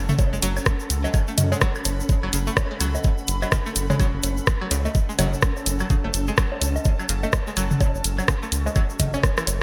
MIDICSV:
0, 0, Header, 1, 5, 480
1, 0, Start_track
1, 0, Key_signature, 3, "minor"
1, 0, Tempo, 476190
1, 188, Time_signature, 4, 2, 24, 8
1, 9705, End_track
2, 0, Start_track
2, 0, Title_t, "Ambient pad"
2, 0, Program_c, 0, 92
2, 0, Note_on_c, 0, 61, 86
2, 0, Note_on_c, 0, 69, 84
2, 0, Note_on_c, 0, 78, 91
2, 0, Note_on_c, 0, 81, 84
2, 339, Note_on_c, 0, 83, 87
2, 358, Note_off_c, 0, 81, 0
2, 4178, Note_on_c, 0, 81, 88
2, 4198, Note_off_c, 0, 83, 0
2, 8019, Note_on_c, 0, 85, 88
2, 8038, Note_off_c, 0, 81, 0
2, 9705, Note_off_c, 0, 61, 0
2, 9705, Note_off_c, 0, 69, 0
2, 9705, Note_off_c, 0, 78, 0
2, 9705, Note_off_c, 0, 85, 0
2, 9705, End_track
3, 0, Start_track
3, 0, Title_t, "Synth pluck"
3, 0, Program_c, 1, 84
3, 91, Note_on_c, 1, 57, 79
3, 112, Note_off_c, 1, 57, 0
3, 331, Note_on_c, 1, 56, 83
3, 352, Note_off_c, 1, 56, 0
3, 427, Note_on_c, 1, 54, 101
3, 506, Note_off_c, 1, 54, 0
3, 1051, Note_on_c, 1, 54, 77
3, 1104, Note_off_c, 1, 54, 0
3, 1148, Note_on_c, 1, 49, 86
3, 1179, Note_off_c, 1, 49, 0
3, 1291, Note_on_c, 1, 57, 76
3, 1312, Note_off_c, 1, 57, 0
3, 1531, Note_on_c, 1, 56, 74
3, 1552, Note_off_c, 1, 56, 0
3, 1628, Note_on_c, 1, 54, 100
3, 1707, Note_off_c, 1, 54, 0
3, 2251, Note_on_c, 1, 54, 76
3, 2304, Note_off_c, 1, 54, 0
3, 2348, Note_on_c, 1, 49, 76
3, 2380, Note_off_c, 1, 49, 0
3, 2491, Note_on_c, 1, 57, 76
3, 2512, Note_off_c, 1, 57, 0
3, 2731, Note_on_c, 1, 56, 76
3, 2752, Note_off_c, 1, 56, 0
3, 2828, Note_on_c, 1, 54, 106
3, 2907, Note_off_c, 1, 54, 0
3, 3451, Note_on_c, 1, 54, 77
3, 3504, Note_off_c, 1, 54, 0
3, 3548, Note_on_c, 1, 49, 83
3, 3580, Note_off_c, 1, 49, 0
3, 3691, Note_on_c, 1, 57, 85
3, 3713, Note_off_c, 1, 57, 0
3, 3931, Note_on_c, 1, 56, 78
3, 3952, Note_off_c, 1, 56, 0
3, 4028, Note_on_c, 1, 54, 107
3, 4107, Note_off_c, 1, 54, 0
3, 4651, Note_on_c, 1, 54, 80
3, 4704, Note_off_c, 1, 54, 0
3, 4748, Note_on_c, 1, 49, 78
3, 4779, Note_off_c, 1, 49, 0
3, 4892, Note_on_c, 1, 57, 76
3, 4913, Note_off_c, 1, 57, 0
3, 5131, Note_on_c, 1, 56, 76
3, 5152, Note_off_c, 1, 56, 0
3, 5228, Note_on_c, 1, 54, 106
3, 5307, Note_off_c, 1, 54, 0
3, 5851, Note_on_c, 1, 54, 79
3, 5904, Note_off_c, 1, 54, 0
3, 5948, Note_on_c, 1, 49, 87
3, 5979, Note_off_c, 1, 49, 0
3, 6091, Note_on_c, 1, 57, 83
3, 6113, Note_off_c, 1, 57, 0
3, 6331, Note_on_c, 1, 56, 77
3, 6352, Note_off_c, 1, 56, 0
3, 6428, Note_on_c, 1, 54, 99
3, 6507, Note_off_c, 1, 54, 0
3, 7051, Note_on_c, 1, 54, 75
3, 7104, Note_off_c, 1, 54, 0
3, 7148, Note_on_c, 1, 49, 81
3, 7180, Note_off_c, 1, 49, 0
3, 7291, Note_on_c, 1, 57, 75
3, 7312, Note_off_c, 1, 57, 0
3, 7532, Note_on_c, 1, 56, 79
3, 7553, Note_off_c, 1, 56, 0
3, 7628, Note_on_c, 1, 54, 107
3, 7707, Note_off_c, 1, 54, 0
3, 8251, Note_on_c, 1, 54, 75
3, 8305, Note_off_c, 1, 54, 0
3, 8348, Note_on_c, 1, 49, 82
3, 8380, Note_off_c, 1, 49, 0
3, 8491, Note_on_c, 1, 57, 79
3, 8512, Note_off_c, 1, 57, 0
3, 8731, Note_on_c, 1, 56, 73
3, 8752, Note_off_c, 1, 56, 0
3, 8828, Note_on_c, 1, 54, 108
3, 8906, Note_off_c, 1, 54, 0
3, 9212, Note_on_c, 1, 61, 98
3, 9247, Note_off_c, 1, 61, 0
3, 9452, Note_on_c, 1, 52, 85
3, 9505, Note_off_c, 1, 52, 0
3, 9705, End_track
4, 0, Start_track
4, 0, Title_t, "Analog synth bass"
4, 0, Program_c, 2, 38
4, 0, Note_on_c, 2, 30, 100
4, 114, Note_off_c, 2, 30, 0
4, 331, Note_on_c, 2, 30, 99
4, 391, Note_off_c, 2, 30, 0
4, 428, Note_on_c, 2, 30, 108
4, 594, Note_off_c, 2, 30, 0
4, 908, Note_on_c, 2, 37, 88
4, 1074, Note_off_c, 2, 37, 0
4, 1388, Note_on_c, 2, 42, 84
4, 1554, Note_off_c, 2, 42, 0
4, 1868, Note_on_c, 2, 30, 86
4, 2034, Note_off_c, 2, 30, 0
4, 2251, Note_on_c, 2, 30, 96
4, 2311, Note_off_c, 2, 30, 0
4, 2348, Note_on_c, 2, 30, 99
4, 2514, Note_off_c, 2, 30, 0
4, 2828, Note_on_c, 2, 37, 89
4, 2994, Note_off_c, 2, 37, 0
4, 3308, Note_on_c, 2, 30, 102
4, 3474, Note_off_c, 2, 30, 0
4, 3788, Note_on_c, 2, 30, 101
4, 3954, Note_off_c, 2, 30, 0
4, 4171, Note_on_c, 2, 30, 101
4, 4231, Note_off_c, 2, 30, 0
4, 4268, Note_on_c, 2, 30, 105
4, 4434, Note_off_c, 2, 30, 0
4, 4748, Note_on_c, 2, 37, 93
4, 4914, Note_off_c, 2, 37, 0
4, 5228, Note_on_c, 2, 30, 103
4, 5394, Note_off_c, 2, 30, 0
4, 5708, Note_on_c, 2, 30, 104
4, 5874, Note_off_c, 2, 30, 0
4, 6091, Note_on_c, 2, 30, 105
4, 6151, Note_off_c, 2, 30, 0
4, 6188, Note_on_c, 2, 30, 109
4, 6354, Note_off_c, 2, 30, 0
4, 6668, Note_on_c, 2, 37, 89
4, 6834, Note_off_c, 2, 37, 0
4, 7148, Note_on_c, 2, 30, 101
4, 7314, Note_off_c, 2, 30, 0
4, 7628, Note_on_c, 2, 30, 103
4, 7794, Note_off_c, 2, 30, 0
4, 8011, Note_on_c, 2, 30, 99
4, 8071, Note_off_c, 2, 30, 0
4, 8108, Note_on_c, 2, 30, 105
4, 8274, Note_off_c, 2, 30, 0
4, 8588, Note_on_c, 2, 37, 93
4, 8754, Note_off_c, 2, 37, 0
4, 9068, Note_on_c, 2, 30, 98
4, 9234, Note_off_c, 2, 30, 0
4, 9548, Note_on_c, 2, 30, 97
4, 9705, Note_off_c, 2, 30, 0
4, 9705, End_track
5, 0, Start_track
5, 0, Title_t, "Drums"
5, 88, Note_on_c, 9, 82, 44
5, 91, Note_on_c, 9, 47, 98
5, 188, Note_off_c, 9, 82, 0
5, 188, Note_on_c, 9, 36, 127
5, 188, Note_on_c, 9, 60, 78
5, 188, Note_on_c, 9, 82, 54
5, 192, Note_off_c, 9, 47, 0
5, 288, Note_off_c, 9, 36, 0
5, 288, Note_off_c, 9, 60, 0
5, 289, Note_off_c, 9, 82, 0
5, 340, Note_on_c, 9, 82, 36
5, 428, Note_on_c, 9, 42, 97
5, 430, Note_off_c, 9, 82, 0
5, 430, Note_on_c, 9, 82, 86
5, 528, Note_off_c, 9, 42, 0
5, 531, Note_off_c, 9, 82, 0
5, 571, Note_on_c, 9, 60, 38
5, 571, Note_on_c, 9, 76, 67
5, 573, Note_on_c, 9, 82, 43
5, 661, Note_off_c, 9, 82, 0
5, 661, Note_on_c, 9, 82, 49
5, 668, Note_on_c, 9, 36, 125
5, 668, Note_on_c, 9, 37, 94
5, 672, Note_off_c, 9, 60, 0
5, 672, Note_off_c, 9, 76, 0
5, 761, Note_off_c, 9, 82, 0
5, 768, Note_off_c, 9, 36, 0
5, 769, Note_off_c, 9, 37, 0
5, 804, Note_on_c, 9, 82, 34
5, 905, Note_off_c, 9, 82, 0
5, 908, Note_on_c, 9, 42, 98
5, 911, Note_on_c, 9, 82, 87
5, 1009, Note_off_c, 9, 42, 0
5, 1012, Note_off_c, 9, 82, 0
5, 1051, Note_on_c, 9, 60, 39
5, 1051, Note_on_c, 9, 77, 85
5, 1056, Note_on_c, 9, 82, 37
5, 1147, Note_on_c, 9, 76, 65
5, 1148, Note_off_c, 9, 82, 0
5, 1148, Note_on_c, 9, 36, 123
5, 1148, Note_on_c, 9, 82, 53
5, 1152, Note_off_c, 9, 60, 0
5, 1152, Note_off_c, 9, 77, 0
5, 1248, Note_off_c, 9, 76, 0
5, 1249, Note_off_c, 9, 36, 0
5, 1249, Note_off_c, 9, 82, 0
5, 1286, Note_on_c, 9, 82, 38
5, 1386, Note_off_c, 9, 82, 0
5, 1387, Note_on_c, 9, 47, 93
5, 1387, Note_on_c, 9, 77, 81
5, 1388, Note_on_c, 9, 42, 101
5, 1391, Note_on_c, 9, 82, 92
5, 1488, Note_off_c, 9, 42, 0
5, 1488, Note_off_c, 9, 47, 0
5, 1488, Note_off_c, 9, 77, 0
5, 1492, Note_off_c, 9, 82, 0
5, 1531, Note_on_c, 9, 60, 77
5, 1539, Note_on_c, 9, 82, 40
5, 1623, Note_off_c, 9, 82, 0
5, 1623, Note_on_c, 9, 82, 52
5, 1628, Note_on_c, 9, 36, 116
5, 1628, Note_on_c, 9, 37, 95
5, 1631, Note_off_c, 9, 60, 0
5, 1724, Note_off_c, 9, 82, 0
5, 1728, Note_off_c, 9, 37, 0
5, 1729, Note_off_c, 9, 36, 0
5, 1765, Note_on_c, 9, 82, 35
5, 1771, Note_on_c, 9, 76, 68
5, 1862, Note_off_c, 9, 82, 0
5, 1862, Note_on_c, 9, 82, 92
5, 1868, Note_on_c, 9, 42, 97
5, 1868, Note_on_c, 9, 60, 39
5, 1872, Note_off_c, 9, 76, 0
5, 1963, Note_off_c, 9, 82, 0
5, 1969, Note_off_c, 9, 42, 0
5, 1969, Note_off_c, 9, 60, 0
5, 2017, Note_on_c, 9, 82, 40
5, 2108, Note_off_c, 9, 82, 0
5, 2108, Note_on_c, 9, 36, 121
5, 2108, Note_on_c, 9, 60, 40
5, 2108, Note_on_c, 9, 82, 53
5, 2209, Note_off_c, 9, 36, 0
5, 2209, Note_off_c, 9, 60, 0
5, 2209, Note_off_c, 9, 82, 0
5, 2251, Note_on_c, 9, 76, 68
5, 2348, Note_on_c, 9, 42, 88
5, 2350, Note_on_c, 9, 82, 94
5, 2351, Note_off_c, 9, 76, 0
5, 2449, Note_off_c, 9, 42, 0
5, 2450, Note_off_c, 9, 82, 0
5, 2491, Note_on_c, 9, 82, 43
5, 2588, Note_on_c, 9, 36, 116
5, 2588, Note_on_c, 9, 37, 95
5, 2588, Note_on_c, 9, 60, 79
5, 2590, Note_off_c, 9, 82, 0
5, 2590, Note_on_c, 9, 82, 54
5, 2688, Note_off_c, 9, 60, 0
5, 2689, Note_off_c, 9, 36, 0
5, 2689, Note_off_c, 9, 37, 0
5, 2691, Note_off_c, 9, 82, 0
5, 2827, Note_on_c, 9, 82, 88
5, 2828, Note_on_c, 9, 42, 96
5, 2828, Note_on_c, 9, 76, 69
5, 2928, Note_off_c, 9, 76, 0
5, 2928, Note_off_c, 9, 82, 0
5, 2929, Note_off_c, 9, 42, 0
5, 2971, Note_on_c, 9, 60, 38
5, 2971, Note_on_c, 9, 77, 77
5, 2974, Note_on_c, 9, 82, 42
5, 3060, Note_off_c, 9, 82, 0
5, 3060, Note_on_c, 9, 82, 51
5, 3068, Note_on_c, 9, 36, 121
5, 3072, Note_off_c, 9, 60, 0
5, 3072, Note_off_c, 9, 77, 0
5, 3160, Note_off_c, 9, 82, 0
5, 3169, Note_off_c, 9, 36, 0
5, 3204, Note_on_c, 9, 82, 34
5, 3303, Note_off_c, 9, 82, 0
5, 3303, Note_on_c, 9, 82, 83
5, 3308, Note_on_c, 9, 42, 93
5, 3404, Note_off_c, 9, 82, 0
5, 3409, Note_off_c, 9, 42, 0
5, 3450, Note_on_c, 9, 82, 39
5, 3451, Note_on_c, 9, 60, 40
5, 3451, Note_on_c, 9, 76, 65
5, 3451, Note_on_c, 9, 77, 80
5, 3548, Note_on_c, 9, 36, 114
5, 3548, Note_on_c, 9, 37, 93
5, 3549, Note_off_c, 9, 82, 0
5, 3549, Note_on_c, 9, 82, 56
5, 3552, Note_off_c, 9, 60, 0
5, 3552, Note_off_c, 9, 76, 0
5, 3552, Note_off_c, 9, 77, 0
5, 3649, Note_off_c, 9, 36, 0
5, 3649, Note_off_c, 9, 37, 0
5, 3650, Note_off_c, 9, 82, 0
5, 3689, Note_on_c, 9, 82, 36
5, 3787, Note_off_c, 9, 82, 0
5, 3787, Note_on_c, 9, 82, 99
5, 3788, Note_on_c, 9, 42, 93
5, 3888, Note_off_c, 9, 82, 0
5, 3889, Note_off_c, 9, 42, 0
5, 3931, Note_on_c, 9, 47, 92
5, 3931, Note_on_c, 9, 60, 77
5, 3934, Note_on_c, 9, 82, 40
5, 4028, Note_on_c, 9, 36, 113
5, 4028, Note_on_c, 9, 76, 72
5, 4031, Note_off_c, 9, 47, 0
5, 4031, Note_off_c, 9, 60, 0
5, 4033, Note_off_c, 9, 82, 0
5, 4033, Note_on_c, 9, 82, 54
5, 4129, Note_off_c, 9, 36, 0
5, 4129, Note_off_c, 9, 76, 0
5, 4134, Note_off_c, 9, 82, 0
5, 4261, Note_on_c, 9, 82, 88
5, 4268, Note_on_c, 9, 42, 90
5, 4268, Note_on_c, 9, 60, 40
5, 4362, Note_off_c, 9, 82, 0
5, 4369, Note_off_c, 9, 42, 0
5, 4369, Note_off_c, 9, 60, 0
5, 4407, Note_on_c, 9, 82, 36
5, 4503, Note_off_c, 9, 82, 0
5, 4503, Note_on_c, 9, 82, 46
5, 4508, Note_on_c, 9, 36, 122
5, 4508, Note_on_c, 9, 37, 91
5, 4604, Note_off_c, 9, 82, 0
5, 4609, Note_off_c, 9, 36, 0
5, 4609, Note_off_c, 9, 37, 0
5, 4651, Note_on_c, 9, 76, 66
5, 4748, Note_on_c, 9, 42, 96
5, 4748, Note_on_c, 9, 60, 44
5, 4751, Note_on_c, 9, 82, 81
5, 4752, Note_off_c, 9, 76, 0
5, 4849, Note_off_c, 9, 42, 0
5, 4849, Note_off_c, 9, 60, 0
5, 4852, Note_off_c, 9, 82, 0
5, 4891, Note_on_c, 9, 77, 74
5, 4891, Note_on_c, 9, 82, 36
5, 4987, Note_off_c, 9, 82, 0
5, 4987, Note_on_c, 9, 82, 56
5, 4988, Note_on_c, 9, 36, 118
5, 4992, Note_off_c, 9, 77, 0
5, 5088, Note_off_c, 9, 82, 0
5, 5089, Note_off_c, 9, 36, 0
5, 5137, Note_on_c, 9, 82, 37
5, 5228, Note_on_c, 9, 42, 95
5, 5228, Note_on_c, 9, 47, 88
5, 5228, Note_on_c, 9, 60, 81
5, 5228, Note_on_c, 9, 76, 69
5, 5228, Note_on_c, 9, 77, 75
5, 5230, Note_off_c, 9, 82, 0
5, 5230, Note_on_c, 9, 82, 87
5, 5329, Note_off_c, 9, 42, 0
5, 5329, Note_off_c, 9, 47, 0
5, 5329, Note_off_c, 9, 60, 0
5, 5329, Note_off_c, 9, 76, 0
5, 5329, Note_off_c, 9, 77, 0
5, 5331, Note_off_c, 9, 82, 0
5, 5376, Note_on_c, 9, 82, 39
5, 5461, Note_off_c, 9, 82, 0
5, 5461, Note_on_c, 9, 82, 46
5, 5468, Note_on_c, 9, 36, 116
5, 5468, Note_on_c, 9, 37, 89
5, 5561, Note_off_c, 9, 82, 0
5, 5569, Note_off_c, 9, 36, 0
5, 5569, Note_off_c, 9, 37, 0
5, 5611, Note_on_c, 9, 60, 40
5, 5611, Note_on_c, 9, 82, 38
5, 5708, Note_on_c, 9, 42, 86
5, 5711, Note_off_c, 9, 82, 0
5, 5712, Note_off_c, 9, 60, 0
5, 5713, Note_on_c, 9, 82, 86
5, 5809, Note_off_c, 9, 42, 0
5, 5814, Note_off_c, 9, 82, 0
5, 5841, Note_on_c, 9, 82, 38
5, 5851, Note_on_c, 9, 76, 74
5, 5942, Note_off_c, 9, 82, 0
5, 5948, Note_on_c, 9, 36, 119
5, 5949, Note_on_c, 9, 82, 48
5, 5952, Note_off_c, 9, 76, 0
5, 6049, Note_off_c, 9, 36, 0
5, 6049, Note_off_c, 9, 82, 0
5, 6091, Note_on_c, 9, 60, 41
5, 6185, Note_on_c, 9, 82, 81
5, 6188, Note_on_c, 9, 42, 89
5, 6192, Note_off_c, 9, 60, 0
5, 6286, Note_off_c, 9, 82, 0
5, 6289, Note_off_c, 9, 42, 0
5, 6325, Note_on_c, 9, 82, 35
5, 6422, Note_off_c, 9, 82, 0
5, 6422, Note_on_c, 9, 82, 44
5, 6428, Note_on_c, 9, 36, 116
5, 6428, Note_on_c, 9, 37, 94
5, 6428, Note_on_c, 9, 76, 74
5, 6523, Note_off_c, 9, 82, 0
5, 6529, Note_off_c, 9, 36, 0
5, 6529, Note_off_c, 9, 37, 0
5, 6529, Note_off_c, 9, 76, 0
5, 6571, Note_on_c, 9, 60, 79
5, 6668, Note_on_c, 9, 42, 89
5, 6672, Note_off_c, 9, 60, 0
5, 6672, Note_on_c, 9, 82, 90
5, 6769, Note_off_c, 9, 42, 0
5, 6773, Note_off_c, 9, 82, 0
5, 6811, Note_on_c, 9, 77, 76
5, 6813, Note_on_c, 9, 82, 35
5, 6902, Note_off_c, 9, 82, 0
5, 6902, Note_on_c, 9, 82, 57
5, 6908, Note_on_c, 9, 36, 112
5, 6908, Note_on_c, 9, 60, 40
5, 6912, Note_off_c, 9, 77, 0
5, 7002, Note_off_c, 9, 82, 0
5, 7009, Note_off_c, 9, 36, 0
5, 7009, Note_off_c, 9, 60, 0
5, 7051, Note_on_c, 9, 76, 69
5, 7053, Note_on_c, 9, 82, 32
5, 7146, Note_off_c, 9, 82, 0
5, 7146, Note_on_c, 9, 82, 82
5, 7148, Note_on_c, 9, 42, 92
5, 7152, Note_off_c, 9, 76, 0
5, 7247, Note_off_c, 9, 82, 0
5, 7249, Note_off_c, 9, 42, 0
5, 7290, Note_on_c, 9, 82, 36
5, 7291, Note_on_c, 9, 77, 75
5, 7385, Note_off_c, 9, 82, 0
5, 7385, Note_on_c, 9, 82, 53
5, 7388, Note_on_c, 9, 36, 111
5, 7388, Note_on_c, 9, 37, 89
5, 7388, Note_on_c, 9, 60, 43
5, 7392, Note_off_c, 9, 77, 0
5, 7486, Note_off_c, 9, 82, 0
5, 7489, Note_off_c, 9, 36, 0
5, 7489, Note_off_c, 9, 37, 0
5, 7489, Note_off_c, 9, 60, 0
5, 7531, Note_on_c, 9, 82, 31
5, 7627, Note_off_c, 9, 82, 0
5, 7627, Note_on_c, 9, 82, 86
5, 7628, Note_on_c, 9, 42, 88
5, 7628, Note_on_c, 9, 76, 70
5, 7728, Note_off_c, 9, 82, 0
5, 7729, Note_off_c, 9, 42, 0
5, 7729, Note_off_c, 9, 76, 0
5, 7770, Note_on_c, 9, 82, 36
5, 7771, Note_on_c, 9, 47, 95
5, 7868, Note_on_c, 9, 36, 119
5, 7868, Note_on_c, 9, 60, 86
5, 7871, Note_off_c, 9, 82, 0
5, 7872, Note_off_c, 9, 47, 0
5, 7872, Note_on_c, 9, 82, 51
5, 7969, Note_off_c, 9, 36, 0
5, 7969, Note_off_c, 9, 60, 0
5, 7972, Note_off_c, 9, 82, 0
5, 8014, Note_on_c, 9, 82, 35
5, 8108, Note_on_c, 9, 42, 89
5, 8112, Note_off_c, 9, 82, 0
5, 8112, Note_on_c, 9, 82, 84
5, 8209, Note_off_c, 9, 42, 0
5, 8212, Note_off_c, 9, 82, 0
5, 8251, Note_on_c, 9, 60, 40
5, 8251, Note_on_c, 9, 76, 69
5, 8254, Note_on_c, 9, 82, 37
5, 8348, Note_on_c, 9, 36, 112
5, 8348, Note_on_c, 9, 37, 98
5, 8349, Note_off_c, 9, 82, 0
5, 8349, Note_on_c, 9, 82, 53
5, 8351, Note_off_c, 9, 60, 0
5, 8351, Note_off_c, 9, 76, 0
5, 8449, Note_off_c, 9, 36, 0
5, 8449, Note_off_c, 9, 37, 0
5, 8450, Note_off_c, 9, 82, 0
5, 8493, Note_on_c, 9, 82, 30
5, 8588, Note_on_c, 9, 42, 92
5, 8593, Note_off_c, 9, 82, 0
5, 8593, Note_on_c, 9, 82, 92
5, 8689, Note_off_c, 9, 42, 0
5, 8694, Note_off_c, 9, 82, 0
5, 8731, Note_on_c, 9, 60, 42
5, 8731, Note_on_c, 9, 77, 78
5, 8735, Note_on_c, 9, 82, 39
5, 8826, Note_off_c, 9, 82, 0
5, 8826, Note_on_c, 9, 82, 47
5, 8828, Note_on_c, 9, 36, 120
5, 8828, Note_on_c, 9, 76, 67
5, 8832, Note_off_c, 9, 60, 0
5, 8832, Note_off_c, 9, 77, 0
5, 8926, Note_off_c, 9, 82, 0
5, 8929, Note_off_c, 9, 36, 0
5, 8929, Note_off_c, 9, 76, 0
5, 8967, Note_on_c, 9, 82, 37
5, 9065, Note_off_c, 9, 82, 0
5, 9065, Note_on_c, 9, 82, 83
5, 9068, Note_on_c, 9, 36, 61
5, 9068, Note_on_c, 9, 42, 97
5, 9068, Note_on_c, 9, 47, 99
5, 9068, Note_on_c, 9, 77, 80
5, 9166, Note_off_c, 9, 82, 0
5, 9168, Note_off_c, 9, 47, 0
5, 9168, Note_off_c, 9, 77, 0
5, 9169, Note_off_c, 9, 36, 0
5, 9169, Note_off_c, 9, 42, 0
5, 9210, Note_on_c, 9, 82, 41
5, 9211, Note_on_c, 9, 60, 85
5, 9308, Note_on_c, 9, 36, 115
5, 9309, Note_on_c, 9, 37, 65
5, 9311, Note_off_c, 9, 82, 0
5, 9312, Note_off_c, 9, 60, 0
5, 9312, Note_on_c, 9, 82, 53
5, 9409, Note_off_c, 9, 36, 0
5, 9409, Note_off_c, 9, 37, 0
5, 9413, Note_off_c, 9, 82, 0
5, 9448, Note_on_c, 9, 82, 35
5, 9451, Note_on_c, 9, 76, 72
5, 9452, Note_on_c, 9, 37, 67
5, 9548, Note_off_c, 9, 82, 0
5, 9548, Note_on_c, 9, 42, 87
5, 9549, Note_on_c, 9, 60, 43
5, 9552, Note_off_c, 9, 76, 0
5, 9553, Note_off_c, 9, 37, 0
5, 9555, Note_on_c, 9, 82, 94
5, 9649, Note_off_c, 9, 42, 0
5, 9649, Note_off_c, 9, 60, 0
5, 9656, Note_off_c, 9, 82, 0
5, 9705, End_track
0, 0, End_of_file